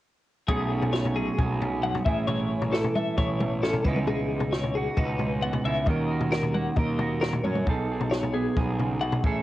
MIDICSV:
0, 0, Header, 1, 5, 480
1, 0, Start_track
1, 0, Tempo, 449102
1, 516, Time_signature, 4, 2, 24, 8
1, 10073, End_track
2, 0, Start_track
2, 0, Title_t, "Clean electric guitar"
2, 0, Program_c, 0, 27
2, 517, Note_on_c, 0, 68, 69
2, 988, Note_off_c, 0, 68, 0
2, 993, Note_on_c, 0, 73, 68
2, 1234, Note_off_c, 0, 73, 0
2, 1237, Note_on_c, 0, 68, 65
2, 1476, Note_off_c, 0, 68, 0
2, 1961, Note_on_c, 0, 78, 71
2, 2190, Note_off_c, 0, 78, 0
2, 2194, Note_on_c, 0, 76, 61
2, 2427, Note_off_c, 0, 76, 0
2, 2431, Note_on_c, 0, 73, 75
2, 2913, Note_off_c, 0, 73, 0
2, 2913, Note_on_c, 0, 69, 74
2, 3154, Note_off_c, 0, 69, 0
2, 3159, Note_on_c, 0, 76, 71
2, 3391, Note_off_c, 0, 76, 0
2, 3396, Note_on_c, 0, 73, 73
2, 3876, Note_off_c, 0, 73, 0
2, 3878, Note_on_c, 0, 69, 75
2, 4109, Note_off_c, 0, 69, 0
2, 4109, Note_on_c, 0, 71, 59
2, 4352, Note_off_c, 0, 71, 0
2, 4357, Note_on_c, 0, 68, 69
2, 4835, Note_on_c, 0, 73, 68
2, 4836, Note_off_c, 0, 68, 0
2, 5076, Note_off_c, 0, 73, 0
2, 5078, Note_on_c, 0, 68, 64
2, 5320, Note_off_c, 0, 68, 0
2, 5320, Note_on_c, 0, 71, 75
2, 5798, Note_off_c, 0, 71, 0
2, 5798, Note_on_c, 0, 78, 73
2, 6036, Note_off_c, 0, 78, 0
2, 6041, Note_on_c, 0, 76, 60
2, 6279, Note_off_c, 0, 76, 0
2, 6279, Note_on_c, 0, 75, 69
2, 6755, Note_on_c, 0, 70, 71
2, 6758, Note_off_c, 0, 75, 0
2, 6994, Note_on_c, 0, 78, 62
2, 6996, Note_off_c, 0, 70, 0
2, 7232, Note_off_c, 0, 78, 0
2, 7232, Note_on_c, 0, 75, 70
2, 7710, Note_on_c, 0, 70, 71
2, 7714, Note_off_c, 0, 75, 0
2, 7947, Note_off_c, 0, 70, 0
2, 7951, Note_on_c, 0, 73, 57
2, 8194, Note_off_c, 0, 73, 0
2, 8670, Note_on_c, 0, 73, 65
2, 8910, Note_on_c, 0, 68, 61
2, 8914, Note_off_c, 0, 73, 0
2, 9154, Note_off_c, 0, 68, 0
2, 9631, Note_on_c, 0, 78, 68
2, 9872, Note_off_c, 0, 78, 0
2, 9872, Note_on_c, 0, 76, 58
2, 10073, Note_off_c, 0, 76, 0
2, 10073, End_track
3, 0, Start_track
3, 0, Title_t, "Clean electric guitar"
3, 0, Program_c, 1, 27
3, 515, Note_on_c, 1, 47, 64
3, 520, Note_on_c, 1, 57, 52
3, 529, Note_on_c, 1, 61, 52
3, 537, Note_on_c, 1, 68, 52
3, 762, Note_off_c, 1, 61, 0
3, 766, Note_on_c, 1, 61, 49
3, 1239, Note_on_c, 1, 54, 57
3, 1474, Note_off_c, 1, 68, 0
3, 1478, Note_on_c, 1, 68, 62
3, 1718, Note_off_c, 1, 61, 0
3, 1722, Note_on_c, 1, 61, 51
3, 1955, Note_off_c, 1, 47, 0
3, 1963, Note_on_c, 1, 42, 62
3, 2169, Note_off_c, 1, 54, 0
3, 2170, Note_off_c, 1, 42, 0
3, 2198, Note_off_c, 1, 57, 0
3, 2202, Note_on_c, 1, 45, 64
3, 2208, Note_off_c, 1, 61, 0
3, 2208, Note_on_c, 1, 61, 47
3, 2217, Note_on_c, 1, 64, 52
3, 2219, Note_off_c, 1, 68, 0
3, 2223, Note_on_c, 1, 68, 58
3, 2453, Note_off_c, 1, 64, 0
3, 2458, Note_on_c, 1, 64, 56
3, 2915, Note_on_c, 1, 52, 62
3, 3159, Note_off_c, 1, 68, 0
3, 3163, Note_on_c, 1, 69, 52
3, 3399, Note_off_c, 1, 64, 0
3, 3403, Note_on_c, 1, 64, 56
3, 3639, Note_off_c, 1, 45, 0
3, 3648, Note_on_c, 1, 40, 53
3, 3883, Note_off_c, 1, 61, 0
3, 3888, Note_on_c, 1, 61, 60
3, 4091, Note_off_c, 1, 64, 0
3, 4091, Note_off_c, 1, 69, 0
3, 4122, Note_off_c, 1, 40, 0
3, 4127, Note_on_c, 1, 49, 64
3, 4130, Note_off_c, 1, 61, 0
3, 4134, Note_on_c, 1, 59, 55
3, 4145, Note_on_c, 1, 63, 49
3, 4150, Note_on_c, 1, 64, 61
3, 4372, Note_off_c, 1, 63, 0
3, 4377, Note_on_c, 1, 63, 58
3, 4836, Note_off_c, 1, 52, 0
3, 4842, Note_off_c, 1, 49, 0
3, 5092, Note_off_c, 1, 64, 0
3, 5097, Note_on_c, 1, 66, 51
3, 5318, Note_off_c, 1, 63, 0
3, 5322, Note_on_c, 1, 63, 61
3, 5563, Note_on_c, 1, 44, 55
3, 5794, Note_off_c, 1, 59, 0
3, 5806, Note_on_c, 1, 59, 58
3, 6011, Note_off_c, 1, 44, 0
3, 6012, Note_off_c, 1, 59, 0
3, 6018, Note_off_c, 1, 66, 0
3, 6038, Note_on_c, 1, 49, 62
3, 6046, Note_on_c, 1, 59, 52
3, 6051, Note_off_c, 1, 63, 0
3, 6055, Note_on_c, 1, 63, 49
3, 6066, Note_on_c, 1, 64, 49
3, 6248, Note_off_c, 1, 49, 0
3, 6252, Note_off_c, 1, 59, 0
3, 6286, Note_on_c, 1, 51, 65
3, 6289, Note_off_c, 1, 64, 0
3, 6292, Note_on_c, 1, 61, 44
3, 6296, Note_off_c, 1, 63, 0
3, 6300, Note_on_c, 1, 66, 45
3, 6309, Note_on_c, 1, 70, 53
3, 6527, Note_off_c, 1, 66, 0
3, 6532, Note_on_c, 1, 66, 52
3, 7006, Note_on_c, 1, 58, 52
3, 7245, Note_off_c, 1, 70, 0
3, 7258, Note_on_c, 1, 70, 54
3, 7479, Note_off_c, 1, 66, 0
3, 7492, Note_on_c, 1, 66, 50
3, 7725, Note_on_c, 1, 46, 61
3, 7972, Note_off_c, 1, 61, 0
3, 7977, Note_on_c, 1, 61, 54
3, 8172, Note_off_c, 1, 46, 0
3, 8173, Note_off_c, 1, 58, 0
3, 8174, Note_off_c, 1, 51, 0
3, 8176, Note_off_c, 1, 66, 0
3, 8179, Note_off_c, 1, 70, 0
3, 8205, Note_on_c, 1, 47, 63
3, 8212, Note_off_c, 1, 61, 0
3, 8216, Note_on_c, 1, 63, 48
3, 8221, Note_on_c, 1, 68, 49
3, 8230, Note_on_c, 1, 69, 55
3, 8455, Note_off_c, 1, 68, 0
3, 8459, Note_on_c, 1, 68, 45
3, 8918, Note_on_c, 1, 59, 54
3, 9169, Note_off_c, 1, 69, 0
3, 9173, Note_off_c, 1, 68, 0
3, 9173, Note_on_c, 1, 68, 61
3, 9406, Note_on_c, 1, 49, 57
3, 9632, Note_off_c, 1, 47, 0
3, 9640, Note_off_c, 1, 49, 0
3, 9645, Note_on_c, 1, 47, 59
3, 9850, Note_off_c, 1, 59, 0
3, 9860, Note_off_c, 1, 63, 0
3, 9876, Note_off_c, 1, 47, 0
3, 9880, Note_on_c, 1, 45, 60
3, 9890, Note_on_c, 1, 61, 50
3, 9899, Note_off_c, 1, 68, 0
3, 9899, Note_on_c, 1, 68, 55
3, 9904, Note_on_c, 1, 69, 58
3, 10073, Note_off_c, 1, 45, 0
3, 10073, Note_off_c, 1, 61, 0
3, 10073, Note_off_c, 1, 68, 0
3, 10073, Note_off_c, 1, 69, 0
3, 10073, End_track
4, 0, Start_track
4, 0, Title_t, "Picked electric bass"
4, 0, Program_c, 2, 34
4, 518, Note_on_c, 2, 35, 89
4, 1373, Note_off_c, 2, 35, 0
4, 1481, Note_on_c, 2, 35, 86
4, 2121, Note_off_c, 2, 35, 0
4, 2200, Note_on_c, 2, 33, 78
4, 3054, Note_off_c, 2, 33, 0
4, 3397, Note_on_c, 2, 33, 89
4, 4038, Note_off_c, 2, 33, 0
4, 4116, Note_on_c, 2, 37, 83
4, 4330, Note_off_c, 2, 37, 0
4, 4355, Note_on_c, 2, 37, 91
4, 5211, Note_off_c, 2, 37, 0
4, 5315, Note_on_c, 2, 37, 87
4, 5957, Note_off_c, 2, 37, 0
4, 6031, Note_on_c, 2, 37, 76
4, 6247, Note_off_c, 2, 37, 0
4, 6270, Note_on_c, 2, 39, 94
4, 7129, Note_off_c, 2, 39, 0
4, 7233, Note_on_c, 2, 39, 91
4, 7877, Note_off_c, 2, 39, 0
4, 7948, Note_on_c, 2, 42, 77
4, 8166, Note_off_c, 2, 42, 0
4, 8193, Note_on_c, 2, 35, 90
4, 9052, Note_off_c, 2, 35, 0
4, 9156, Note_on_c, 2, 35, 87
4, 9800, Note_off_c, 2, 35, 0
4, 9875, Note_on_c, 2, 33, 79
4, 10073, Note_off_c, 2, 33, 0
4, 10073, End_track
5, 0, Start_track
5, 0, Title_t, "Drums"
5, 517, Note_on_c, 9, 43, 74
5, 518, Note_on_c, 9, 36, 94
5, 624, Note_off_c, 9, 43, 0
5, 625, Note_off_c, 9, 36, 0
5, 881, Note_on_c, 9, 43, 70
5, 988, Note_off_c, 9, 43, 0
5, 1004, Note_on_c, 9, 38, 71
5, 1111, Note_off_c, 9, 38, 0
5, 1126, Note_on_c, 9, 43, 73
5, 1233, Note_off_c, 9, 43, 0
5, 1482, Note_on_c, 9, 36, 104
5, 1485, Note_on_c, 9, 43, 82
5, 1588, Note_off_c, 9, 36, 0
5, 1592, Note_off_c, 9, 43, 0
5, 1729, Note_on_c, 9, 43, 81
5, 1836, Note_off_c, 9, 43, 0
5, 2084, Note_on_c, 9, 43, 81
5, 2190, Note_off_c, 9, 43, 0
5, 2202, Note_on_c, 9, 36, 99
5, 2309, Note_off_c, 9, 36, 0
5, 2438, Note_on_c, 9, 43, 80
5, 2544, Note_off_c, 9, 43, 0
5, 2798, Note_on_c, 9, 43, 75
5, 2905, Note_off_c, 9, 43, 0
5, 2921, Note_on_c, 9, 38, 72
5, 3028, Note_off_c, 9, 38, 0
5, 3038, Note_on_c, 9, 43, 77
5, 3145, Note_off_c, 9, 43, 0
5, 3158, Note_on_c, 9, 47, 78
5, 3265, Note_off_c, 9, 47, 0
5, 3395, Note_on_c, 9, 43, 82
5, 3398, Note_on_c, 9, 36, 103
5, 3502, Note_off_c, 9, 43, 0
5, 3505, Note_off_c, 9, 36, 0
5, 3637, Note_on_c, 9, 43, 83
5, 3637, Note_on_c, 9, 47, 66
5, 3744, Note_off_c, 9, 43, 0
5, 3744, Note_off_c, 9, 47, 0
5, 3883, Note_on_c, 9, 38, 72
5, 3990, Note_off_c, 9, 38, 0
5, 3991, Note_on_c, 9, 43, 85
5, 4098, Note_off_c, 9, 43, 0
5, 4108, Note_on_c, 9, 47, 77
5, 4115, Note_on_c, 9, 36, 100
5, 4215, Note_off_c, 9, 47, 0
5, 4222, Note_off_c, 9, 36, 0
5, 4231, Note_on_c, 9, 47, 69
5, 4338, Note_off_c, 9, 47, 0
5, 4353, Note_on_c, 9, 43, 71
5, 4460, Note_off_c, 9, 43, 0
5, 4706, Note_on_c, 9, 43, 76
5, 4813, Note_off_c, 9, 43, 0
5, 4839, Note_on_c, 9, 38, 70
5, 4946, Note_off_c, 9, 38, 0
5, 4955, Note_on_c, 9, 43, 70
5, 5062, Note_off_c, 9, 43, 0
5, 5311, Note_on_c, 9, 43, 78
5, 5315, Note_on_c, 9, 36, 102
5, 5418, Note_off_c, 9, 43, 0
5, 5422, Note_off_c, 9, 36, 0
5, 5549, Note_on_c, 9, 43, 74
5, 5655, Note_off_c, 9, 43, 0
5, 5912, Note_on_c, 9, 43, 82
5, 6019, Note_off_c, 9, 43, 0
5, 6265, Note_on_c, 9, 43, 72
5, 6274, Note_on_c, 9, 36, 93
5, 6372, Note_off_c, 9, 43, 0
5, 6381, Note_off_c, 9, 36, 0
5, 6635, Note_on_c, 9, 43, 72
5, 6742, Note_off_c, 9, 43, 0
5, 6760, Note_on_c, 9, 38, 70
5, 6867, Note_off_c, 9, 38, 0
5, 6870, Note_on_c, 9, 43, 71
5, 6977, Note_off_c, 9, 43, 0
5, 6996, Note_on_c, 9, 47, 75
5, 7102, Note_off_c, 9, 47, 0
5, 7228, Note_on_c, 9, 43, 78
5, 7235, Note_on_c, 9, 36, 95
5, 7335, Note_off_c, 9, 43, 0
5, 7342, Note_off_c, 9, 36, 0
5, 7470, Note_on_c, 9, 43, 75
5, 7470, Note_on_c, 9, 47, 67
5, 7577, Note_off_c, 9, 43, 0
5, 7577, Note_off_c, 9, 47, 0
5, 7723, Note_on_c, 9, 38, 75
5, 7830, Note_off_c, 9, 38, 0
5, 7833, Note_on_c, 9, 43, 75
5, 7940, Note_off_c, 9, 43, 0
5, 7958, Note_on_c, 9, 47, 78
5, 8064, Note_off_c, 9, 47, 0
5, 8072, Note_on_c, 9, 47, 67
5, 8179, Note_off_c, 9, 47, 0
5, 8194, Note_on_c, 9, 43, 73
5, 8197, Note_on_c, 9, 36, 90
5, 8301, Note_off_c, 9, 43, 0
5, 8304, Note_off_c, 9, 36, 0
5, 8557, Note_on_c, 9, 43, 71
5, 8664, Note_off_c, 9, 43, 0
5, 8681, Note_on_c, 9, 38, 63
5, 8788, Note_off_c, 9, 38, 0
5, 8797, Note_on_c, 9, 43, 74
5, 8904, Note_off_c, 9, 43, 0
5, 9157, Note_on_c, 9, 36, 94
5, 9157, Note_on_c, 9, 43, 80
5, 9264, Note_off_c, 9, 36, 0
5, 9264, Note_off_c, 9, 43, 0
5, 9400, Note_on_c, 9, 43, 71
5, 9507, Note_off_c, 9, 43, 0
5, 9752, Note_on_c, 9, 43, 75
5, 9859, Note_off_c, 9, 43, 0
5, 9876, Note_on_c, 9, 36, 100
5, 9983, Note_off_c, 9, 36, 0
5, 10073, End_track
0, 0, End_of_file